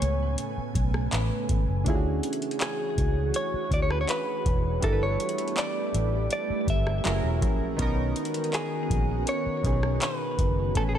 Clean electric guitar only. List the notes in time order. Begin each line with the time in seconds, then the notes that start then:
Already playing: C#5
2.62 G#4
3.36 C#5
3.74 D5
3.82 C#5
3.92 B4
4.01 C#5
4.10 B4
4.84 A4
5.03 C#5
5.58 D5
6.33 D5
6.70 E5
8.55 G#4
9.29 C#5
10.03 B4
10.77 A4
10.89 G#4
10.95 A4